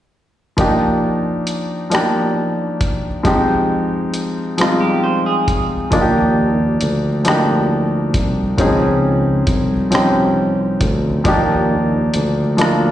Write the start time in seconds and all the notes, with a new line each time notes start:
0.57 F3 A#3 D4 D#4 G4, kick, closed hi-hat
1.47 closed hi-hat
1.90 F3 A#3 D4 D#4 G4, closed hi-hat
1.95 cross-stick
2.81 kick, closed hi-hat
3.23 F3 G#3 C4 D#4 G4, kick, closed hi-hat
4.14 closed hi-hat
4.58 F3 G3 C4 D#4, cross-stick, closed hi-hat
4.62 G#3 F4
4.80 G4
5.04 C5
5.26 G#4
5.48 kick, closed hi-hat
5.91 D#2 F3 A#3 D4 D#4, kick, closed hi-hat
5.95 F4
6.01 G4
6.81 D2, closed hi-hat
7.24 F3 A#3 D4 D#4, cross-stick, closed hi-hat
7.29 G4
8.14 C2, kick, closed hi-hat
8.57 C#2 D#3 C4 C#4 D#4 G#4, kick, closed hi-hat
8.64 F3
9.47 C2, kick, closed hi-hat
9.91 F3 C4 C#4 D#4 G4, closed hi-hat
9.95 cross-stick
10.81 D2, kick, closed hi-hat
11.24 D#2 F3 A#3 D4 D#4 G4, kick, closed hi-hat
12.14 D2, closed hi-hat
12.57 F3 A#3 D4 D#4, closed hi-hat
12.61 F4, cross-stick